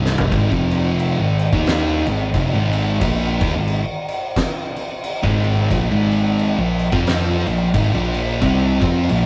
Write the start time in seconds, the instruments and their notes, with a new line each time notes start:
Already playing: picked electric bass C1, distorted electric guitar C2 G2 C3
0.06 snare
0.18 floor tom
0.31 picked electric bass G#1, distorted electric guitar G#2 D#3, kick, crash
0.51 picked electric bass F1, distorted electric guitar F2 C3 F3, kick
0.71 crash
1.00 crash
1.19 picked electric bass G#1, distorted electric guitar G#2 D#3
1.39 crash
1.52 picked electric bass D#2, distorted electric guitar D#3 A#3 D#4, kick
1.67 snare, crash
2.07 picked electric bass G#1, distorted electric guitar G#2 D#3, crash
2.34 picked electric bass F1, distorted electric guitar F2 C3, kick, crash
2.54 picked electric bass G#1, distorted electric guitar G#2 D#3 G#3
2.73 crash
3.01 picked electric bass A#1, distorted electric guitar A#2 F3 A#3, kick, crash
3.41 picked electric bass D#2, distorted electric guitar D#3 A#3, kick, crash
3.55 picked electric bass G#1, distorted electric guitar G#2 D#3
3.68 crash
4.08 crash
4.36 kick, snare, crash
4.76 crash
5.04 crash
5.23 picked electric bass G#1, distorted electric guitar G#2 D#3 G#3, kick
5.44 crash
5.70 picked electric bass A#1, distorted electric guitar A#2 F3, kick, crash
5.91 picked electric bass G#1, distorted electric guitar G#2 D#3 G#3
6.11 crash
6.39 crash
6.58 picked electric bass A#1, distorted electric guitar A#2 F3
6.79 crash
6.92 picked electric bass F2, distorted electric guitar F3 C4 F4, kick
7.07 snare, crash
7.47 picked electric bass A#1, distorted electric guitar A#2 F3, crash
7.74 picked electric bass G#1, distorted electric guitar G#2 D#3, kick, crash
7.94 picked electric bass A#1, distorted electric guitar A#2 F3 A#3
8.14 crash
8.41 picked electric bass C2, distorted electric guitar C3 G3 C4, kick, crash
8.81 picked electric bass F2, distorted electric guitar F3 C4 F4, kick, crash
9.09 picked electric bass A#1, distorted electric guitar A#2 F3 A#3, crash